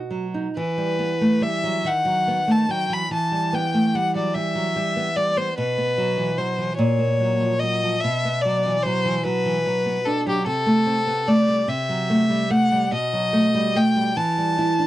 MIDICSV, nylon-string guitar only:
0, 0, Header, 1, 2, 480
1, 0, Start_track
1, 0, Key_signature, 1, "minor"
1, 0, Tempo, 882353
1, 305, Time_signature, 6, 3, 24, 8
1, 776, Tempo, 837989
1, 2216, Tempo, 814111
1, 6056, Tempo, 828729
1, 8614, End_track
2, 0, Start_track
2, 0, Title_t, "Nylon-string guitar"
2, 0, Program_c, 0, 24
2, 0, Note_on_c, 0, 47, 61
2, 0, Note_on_c, 0, 66, 51
2, 57, Note_on_c, 0, 54, 47
2, 132, Note_off_c, 0, 66, 0
2, 186, Note_on_c, 0, 63, 46
2, 256, Note_off_c, 0, 54, 0
2, 280, Note_off_c, 0, 47, 0
2, 306, Note_off_c, 0, 63, 0
2, 309, Note_on_c, 0, 52, 66
2, 422, Note_on_c, 0, 55, 52
2, 538, Note_on_c, 0, 59, 59
2, 610, Note_off_c, 0, 55, 0
2, 659, Note_on_c, 0, 57, 55
2, 727, Note_off_c, 0, 59, 0
2, 767, Note_on_c, 0, 55, 63
2, 776, Note_off_c, 0, 57, 0
2, 896, Note_on_c, 0, 54, 46
2, 967, Note_off_c, 0, 55, 0
2, 1000, Note_off_c, 0, 52, 0
2, 1015, Note_on_c, 0, 51, 67
2, 1018, Note_off_c, 0, 54, 0
2, 1133, Note_on_c, 0, 54, 54
2, 1263, Note_on_c, 0, 59, 58
2, 1327, Note_off_c, 0, 54, 0
2, 1377, Note_on_c, 0, 57, 52
2, 1452, Note_off_c, 0, 59, 0
2, 1496, Note_off_c, 0, 57, 0
2, 1499, Note_on_c, 0, 54, 54
2, 1615, Note_off_c, 0, 51, 0
2, 1617, Note_on_c, 0, 52, 43
2, 1691, Note_off_c, 0, 54, 0
2, 1733, Note_off_c, 0, 52, 0
2, 1740, Note_on_c, 0, 52, 69
2, 1858, Note_on_c, 0, 55, 51
2, 1981, Note_on_c, 0, 59, 63
2, 2049, Note_off_c, 0, 55, 0
2, 2101, Note_on_c, 0, 57, 54
2, 2169, Note_off_c, 0, 59, 0
2, 2217, Note_off_c, 0, 57, 0
2, 2218, Note_on_c, 0, 55, 62
2, 2341, Note_on_c, 0, 54, 52
2, 2409, Note_off_c, 0, 55, 0
2, 2458, Note_off_c, 0, 54, 0
2, 2459, Note_on_c, 0, 55, 59
2, 2576, Note_on_c, 0, 54, 49
2, 2648, Note_off_c, 0, 55, 0
2, 2694, Note_off_c, 0, 54, 0
2, 2698, Note_on_c, 0, 55, 55
2, 2819, Note_on_c, 0, 59, 53
2, 2888, Note_off_c, 0, 55, 0
2, 2936, Note_on_c, 0, 55, 58
2, 3009, Note_off_c, 0, 59, 0
2, 3057, Note_on_c, 0, 59, 54
2, 3127, Note_off_c, 0, 55, 0
2, 3151, Note_off_c, 0, 52, 0
2, 3176, Note_off_c, 0, 59, 0
2, 3181, Note_on_c, 0, 47, 72
2, 3300, Note_on_c, 0, 59, 51
2, 3418, Note_on_c, 0, 54, 64
2, 3486, Note_off_c, 0, 59, 0
2, 3533, Note_on_c, 0, 52, 60
2, 3604, Note_off_c, 0, 54, 0
2, 3649, Note_off_c, 0, 52, 0
2, 3654, Note_on_c, 0, 54, 64
2, 3774, Note_on_c, 0, 52, 53
2, 3841, Note_off_c, 0, 54, 0
2, 3868, Note_off_c, 0, 47, 0
2, 3890, Note_off_c, 0, 52, 0
2, 3894, Note_on_c, 0, 46, 73
2, 4013, Note_on_c, 0, 58, 52
2, 4138, Note_on_c, 0, 54, 54
2, 4206, Note_off_c, 0, 58, 0
2, 4258, Note_on_c, 0, 53, 54
2, 4331, Note_off_c, 0, 54, 0
2, 4378, Note_off_c, 0, 53, 0
2, 4390, Note_on_c, 0, 54, 58
2, 4512, Note_on_c, 0, 53, 46
2, 4578, Note_off_c, 0, 54, 0
2, 4602, Note_off_c, 0, 46, 0
2, 4627, Note_off_c, 0, 53, 0
2, 4632, Note_on_c, 0, 47, 83
2, 4757, Note_on_c, 0, 59, 53
2, 4876, Note_on_c, 0, 54, 56
2, 4942, Note_off_c, 0, 59, 0
2, 4997, Note_on_c, 0, 52, 59
2, 5060, Note_off_c, 0, 54, 0
2, 5108, Note_off_c, 0, 52, 0
2, 5113, Note_on_c, 0, 54, 70
2, 5229, Note_on_c, 0, 52, 54
2, 5295, Note_off_c, 0, 54, 0
2, 5342, Note_off_c, 0, 52, 0
2, 5345, Note_on_c, 0, 54, 68
2, 5468, Note_on_c, 0, 52, 48
2, 5533, Note_off_c, 0, 54, 0
2, 5582, Note_off_c, 0, 52, 0
2, 5589, Note_on_c, 0, 54, 59
2, 5706, Note_on_c, 0, 59, 55
2, 5775, Note_off_c, 0, 54, 0
2, 5826, Note_on_c, 0, 62, 61
2, 5892, Note_off_c, 0, 59, 0
2, 5946, Note_on_c, 0, 54, 61
2, 6011, Note_off_c, 0, 62, 0
2, 6037, Note_off_c, 0, 47, 0
2, 6059, Note_off_c, 0, 54, 0
2, 6060, Note_on_c, 0, 48, 75
2, 6178, Note_on_c, 0, 57, 57
2, 6295, Note_on_c, 0, 60, 65
2, 6364, Note_off_c, 0, 57, 0
2, 6414, Note_on_c, 0, 59, 63
2, 6484, Note_off_c, 0, 60, 0
2, 6532, Note_off_c, 0, 59, 0
2, 6534, Note_on_c, 0, 57, 68
2, 6650, Note_on_c, 0, 55, 52
2, 6725, Note_off_c, 0, 57, 0
2, 6753, Note_off_c, 0, 48, 0
2, 6765, Note_on_c, 0, 48, 82
2, 6771, Note_off_c, 0, 55, 0
2, 6890, Note_on_c, 0, 54, 67
2, 7009, Note_on_c, 0, 57, 71
2, 7079, Note_off_c, 0, 54, 0
2, 7124, Note_on_c, 0, 55, 58
2, 7198, Note_off_c, 0, 57, 0
2, 7243, Note_on_c, 0, 57, 64
2, 7244, Note_off_c, 0, 55, 0
2, 7365, Note_on_c, 0, 55, 53
2, 7435, Note_off_c, 0, 57, 0
2, 7460, Note_off_c, 0, 48, 0
2, 7484, Note_on_c, 0, 47, 81
2, 7485, Note_off_c, 0, 55, 0
2, 7608, Note_on_c, 0, 54, 63
2, 7722, Note_on_c, 0, 57, 69
2, 7800, Note_off_c, 0, 54, 0
2, 7846, Note_on_c, 0, 55, 71
2, 7918, Note_off_c, 0, 57, 0
2, 7967, Note_on_c, 0, 57, 69
2, 7968, Note_off_c, 0, 55, 0
2, 8088, Note_on_c, 0, 55, 61
2, 8161, Note_off_c, 0, 57, 0
2, 8188, Note_off_c, 0, 47, 0
2, 8205, Note_off_c, 0, 55, 0
2, 8207, Note_on_c, 0, 52, 88
2, 8329, Note_on_c, 0, 55, 59
2, 8448, Note_on_c, 0, 64, 65
2, 8523, Note_off_c, 0, 55, 0
2, 8567, Note_on_c, 0, 62, 60
2, 8614, Note_off_c, 0, 52, 0
2, 8614, Note_off_c, 0, 62, 0
2, 8614, Note_off_c, 0, 64, 0
2, 8614, End_track
0, 0, End_of_file